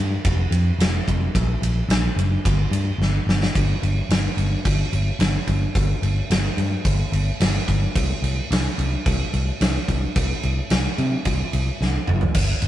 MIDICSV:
0, 0, Header, 1, 3, 480
1, 0, Start_track
1, 0, Tempo, 549451
1, 1180, Time_signature, 4, 2, 24, 8
1, 11075, End_track
2, 0, Start_track
2, 0, Title_t, "Picked electric bass"
2, 0, Program_c, 0, 34
2, 0, Note_on_c, 0, 43, 92
2, 142, Note_off_c, 0, 43, 0
2, 220, Note_on_c, 0, 29, 88
2, 383, Note_off_c, 0, 29, 0
2, 445, Note_on_c, 0, 41, 94
2, 613, Note_off_c, 0, 41, 0
2, 686, Note_on_c, 0, 29, 86
2, 854, Note_off_c, 0, 29, 0
2, 941, Note_on_c, 0, 29, 98
2, 1104, Note_off_c, 0, 29, 0
2, 1179, Note_on_c, 0, 34, 96
2, 1342, Note_off_c, 0, 34, 0
2, 1416, Note_on_c, 0, 34, 78
2, 1580, Note_off_c, 0, 34, 0
2, 1647, Note_on_c, 0, 34, 93
2, 1815, Note_off_c, 0, 34, 0
2, 1889, Note_on_c, 0, 30, 91
2, 2056, Note_off_c, 0, 30, 0
2, 2144, Note_on_c, 0, 31, 96
2, 2306, Note_off_c, 0, 31, 0
2, 2371, Note_on_c, 0, 43, 85
2, 2537, Note_off_c, 0, 43, 0
2, 2605, Note_on_c, 0, 31, 88
2, 2774, Note_off_c, 0, 31, 0
2, 2853, Note_on_c, 0, 31, 92
2, 3019, Note_off_c, 0, 31, 0
2, 3105, Note_on_c, 0, 31, 90
2, 3249, Note_off_c, 0, 31, 0
2, 3343, Note_on_c, 0, 31, 81
2, 3488, Note_off_c, 0, 31, 0
2, 3575, Note_on_c, 0, 31, 86
2, 3722, Note_off_c, 0, 31, 0
2, 3817, Note_on_c, 0, 31, 87
2, 3964, Note_off_c, 0, 31, 0
2, 4065, Note_on_c, 0, 31, 95
2, 4209, Note_off_c, 0, 31, 0
2, 4304, Note_on_c, 0, 31, 88
2, 4448, Note_off_c, 0, 31, 0
2, 4535, Note_on_c, 0, 31, 88
2, 4682, Note_off_c, 0, 31, 0
2, 4782, Note_on_c, 0, 31, 91
2, 4927, Note_off_c, 0, 31, 0
2, 5026, Note_on_c, 0, 31, 85
2, 5170, Note_off_c, 0, 31, 0
2, 5262, Note_on_c, 0, 31, 81
2, 5407, Note_off_c, 0, 31, 0
2, 5504, Note_on_c, 0, 31, 85
2, 5649, Note_off_c, 0, 31, 0
2, 5741, Note_on_c, 0, 43, 89
2, 5887, Note_off_c, 0, 43, 0
2, 5984, Note_on_c, 0, 31, 90
2, 6129, Note_off_c, 0, 31, 0
2, 6221, Note_on_c, 0, 31, 87
2, 6367, Note_off_c, 0, 31, 0
2, 6467, Note_on_c, 0, 31, 84
2, 6611, Note_off_c, 0, 31, 0
2, 6713, Note_on_c, 0, 31, 89
2, 6856, Note_off_c, 0, 31, 0
2, 6949, Note_on_c, 0, 36, 89
2, 7093, Note_off_c, 0, 36, 0
2, 7184, Note_on_c, 0, 36, 83
2, 7329, Note_off_c, 0, 36, 0
2, 7431, Note_on_c, 0, 36, 87
2, 7574, Note_off_c, 0, 36, 0
2, 7671, Note_on_c, 0, 36, 89
2, 7815, Note_off_c, 0, 36, 0
2, 7917, Note_on_c, 0, 36, 101
2, 8059, Note_off_c, 0, 36, 0
2, 8156, Note_on_c, 0, 36, 88
2, 8298, Note_off_c, 0, 36, 0
2, 8393, Note_on_c, 0, 36, 94
2, 8536, Note_off_c, 0, 36, 0
2, 8635, Note_on_c, 0, 36, 95
2, 8777, Note_off_c, 0, 36, 0
2, 8875, Note_on_c, 0, 36, 88
2, 9018, Note_off_c, 0, 36, 0
2, 9117, Note_on_c, 0, 36, 79
2, 9259, Note_off_c, 0, 36, 0
2, 9353, Note_on_c, 0, 36, 86
2, 9496, Note_off_c, 0, 36, 0
2, 9595, Note_on_c, 0, 48, 90
2, 9737, Note_off_c, 0, 48, 0
2, 9832, Note_on_c, 0, 36, 89
2, 9975, Note_off_c, 0, 36, 0
2, 10075, Note_on_c, 0, 36, 92
2, 10218, Note_off_c, 0, 36, 0
2, 10314, Note_on_c, 0, 36, 81
2, 10457, Note_off_c, 0, 36, 0
2, 10552, Note_on_c, 0, 30, 88
2, 10695, Note_off_c, 0, 30, 0
2, 10788, Note_on_c, 0, 31, 85
2, 10933, Note_off_c, 0, 31, 0
2, 11027, Note_on_c, 0, 31, 87
2, 11075, Note_off_c, 0, 31, 0
2, 11075, End_track
3, 0, Start_track
3, 0, Title_t, "Drums"
3, 214, Note_on_c, 9, 51, 95
3, 217, Note_on_c, 9, 36, 116
3, 302, Note_off_c, 9, 51, 0
3, 305, Note_off_c, 9, 36, 0
3, 455, Note_on_c, 9, 51, 74
3, 543, Note_off_c, 9, 51, 0
3, 701, Note_on_c, 9, 51, 98
3, 711, Note_on_c, 9, 38, 127
3, 788, Note_off_c, 9, 51, 0
3, 799, Note_off_c, 9, 38, 0
3, 941, Note_on_c, 9, 36, 75
3, 945, Note_on_c, 9, 51, 70
3, 1028, Note_off_c, 9, 36, 0
3, 1033, Note_off_c, 9, 51, 0
3, 1179, Note_on_c, 9, 36, 105
3, 1182, Note_on_c, 9, 51, 96
3, 1266, Note_off_c, 9, 36, 0
3, 1269, Note_off_c, 9, 51, 0
3, 1425, Note_on_c, 9, 51, 81
3, 1512, Note_off_c, 9, 51, 0
3, 1660, Note_on_c, 9, 51, 93
3, 1670, Note_on_c, 9, 38, 114
3, 1747, Note_off_c, 9, 51, 0
3, 1758, Note_off_c, 9, 38, 0
3, 1909, Note_on_c, 9, 51, 76
3, 1996, Note_off_c, 9, 51, 0
3, 2142, Note_on_c, 9, 36, 109
3, 2145, Note_on_c, 9, 51, 103
3, 2229, Note_off_c, 9, 36, 0
3, 2232, Note_off_c, 9, 51, 0
3, 2384, Note_on_c, 9, 51, 84
3, 2471, Note_off_c, 9, 51, 0
3, 2635, Note_on_c, 9, 38, 67
3, 2722, Note_off_c, 9, 38, 0
3, 2875, Note_on_c, 9, 38, 89
3, 2962, Note_off_c, 9, 38, 0
3, 2995, Note_on_c, 9, 38, 93
3, 3082, Note_off_c, 9, 38, 0
3, 3105, Note_on_c, 9, 36, 112
3, 3111, Note_on_c, 9, 49, 79
3, 3192, Note_off_c, 9, 36, 0
3, 3198, Note_off_c, 9, 49, 0
3, 3347, Note_on_c, 9, 49, 59
3, 3434, Note_off_c, 9, 49, 0
3, 3585, Note_on_c, 9, 49, 74
3, 3595, Note_on_c, 9, 38, 118
3, 3672, Note_off_c, 9, 49, 0
3, 3683, Note_off_c, 9, 38, 0
3, 3824, Note_on_c, 9, 49, 65
3, 3911, Note_off_c, 9, 49, 0
3, 4064, Note_on_c, 9, 36, 107
3, 4065, Note_on_c, 9, 49, 80
3, 4152, Note_off_c, 9, 36, 0
3, 4152, Note_off_c, 9, 49, 0
3, 4306, Note_on_c, 9, 49, 65
3, 4393, Note_off_c, 9, 49, 0
3, 4541, Note_on_c, 9, 49, 79
3, 4551, Note_on_c, 9, 38, 111
3, 4628, Note_off_c, 9, 49, 0
3, 4638, Note_off_c, 9, 38, 0
3, 4783, Note_on_c, 9, 49, 54
3, 4784, Note_on_c, 9, 36, 75
3, 4870, Note_off_c, 9, 49, 0
3, 4871, Note_off_c, 9, 36, 0
3, 5024, Note_on_c, 9, 36, 116
3, 5030, Note_on_c, 9, 49, 71
3, 5112, Note_off_c, 9, 36, 0
3, 5117, Note_off_c, 9, 49, 0
3, 5267, Note_on_c, 9, 49, 57
3, 5355, Note_off_c, 9, 49, 0
3, 5508, Note_on_c, 9, 49, 79
3, 5519, Note_on_c, 9, 38, 117
3, 5596, Note_off_c, 9, 49, 0
3, 5606, Note_off_c, 9, 38, 0
3, 5747, Note_on_c, 9, 49, 62
3, 5835, Note_off_c, 9, 49, 0
3, 5984, Note_on_c, 9, 36, 116
3, 5984, Note_on_c, 9, 49, 82
3, 6071, Note_off_c, 9, 36, 0
3, 6071, Note_off_c, 9, 49, 0
3, 6231, Note_on_c, 9, 49, 66
3, 6318, Note_off_c, 9, 49, 0
3, 6468, Note_on_c, 9, 49, 91
3, 6479, Note_on_c, 9, 38, 113
3, 6556, Note_off_c, 9, 49, 0
3, 6566, Note_off_c, 9, 38, 0
3, 6708, Note_on_c, 9, 49, 65
3, 6709, Note_on_c, 9, 36, 74
3, 6795, Note_off_c, 9, 49, 0
3, 6797, Note_off_c, 9, 36, 0
3, 6950, Note_on_c, 9, 36, 117
3, 6952, Note_on_c, 9, 49, 86
3, 7037, Note_off_c, 9, 36, 0
3, 7039, Note_off_c, 9, 49, 0
3, 7195, Note_on_c, 9, 49, 64
3, 7283, Note_off_c, 9, 49, 0
3, 7440, Note_on_c, 9, 49, 83
3, 7451, Note_on_c, 9, 38, 109
3, 7528, Note_off_c, 9, 49, 0
3, 7538, Note_off_c, 9, 38, 0
3, 7676, Note_on_c, 9, 49, 61
3, 7763, Note_off_c, 9, 49, 0
3, 7914, Note_on_c, 9, 49, 78
3, 7915, Note_on_c, 9, 36, 113
3, 8001, Note_off_c, 9, 49, 0
3, 8002, Note_off_c, 9, 36, 0
3, 8155, Note_on_c, 9, 49, 59
3, 8242, Note_off_c, 9, 49, 0
3, 8394, Note_on_c, 9, 49, 85
3, 8405, Note_on_c, 9, 38, 107
3, 8482, Note_off_c, 9, 49, 0
3, 8492, Note_off_c, 9, 38, 0
3, 8634, Note_on_c, 9, 36, 72
3, 8635, Note_on_c, 9, 49, 53
3, 8722, Note_off_c, 9, 36, 0
3, 8722, Note_off_c, 9, 49, 0
3, 8873, Note_on_c, 9, 49, 77
3, 8875, Note_on_c, 9, 36, 114
3, 8960, Note_off_c, 9, 49, 0
3, 8963, Note_off_c, 9, 36, 0
3, 9114, Note_on_c, 9, 49, 58
3, 9201, Note_off_c, 9, 49, 0
3, 9349, Note_on_c, 9, 49, 80
3, 9359, Note_on_c, 9, 38, 112
3, 9436, Note_off_c, 9, 49, 0
3, 9446, Note_off_c, 9, 38, 0
3, 9593, Note_on_c, 9, 49, 55
3, 9681, Note_off_c, 9, 49, 0
3, 9829, Note_on_c, 9, 49, 76
3, 9833, Note_on_c, 9, 36, 99
3, 9916, Note_off_c, 9, 49, 0
3, 9920, Note_off_c, 9, 36, 0
3, 10073, Note_on_c, 9, 49, 67
3, 10160, Note_off_c, 9, 49, 0
3, 10323, Note_on_c, 9, 38, 65
3, 10411, Note_off_c, 9, 38, 0
3, 10549, Note_on_c, 9, 45, 78
3, 10636, Note_off_c, 9, 45, 0
3, 10667, Note_on_c, 9, 43, 90
3, 10754, Note_off_c, 9, 43, 0
3, 10784, Note_on_c, 9, 49, 90
3, 10784, Note_on_c, 9, 57, 122
3, 10789, Note_on_c, 9, 36, 106
3, 10872, Note_off_c, 9, 49, 0
3, 10872, Note_off_c, 9, 57, 0
3, 10876, Note_off_c, 9, 36, 0
3, 11022, Note_on_c, 9, 49, 64
3, 11075, Note_off_c, 9, 49, 0
3, 11075, End_track
0, 0, End_of_file